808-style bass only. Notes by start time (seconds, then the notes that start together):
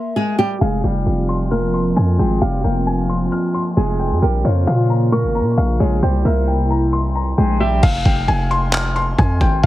0.61 F1
0.84 F1
1.06 F1
1.97 F2
2.19 G#1
2.42 F1
2.64 F1
3.77 F1
4.11 F2
4.22 A#1
4.45 F2
4.67 A#2
5.24 G#1
5.41 A#2
5.57 A#1
5.80 A#1
6.03 C2
6.25 C2
7.38 A#1
7.83 F1
8.05 F1
8.28 F1
9.18 F2
9.41 G#1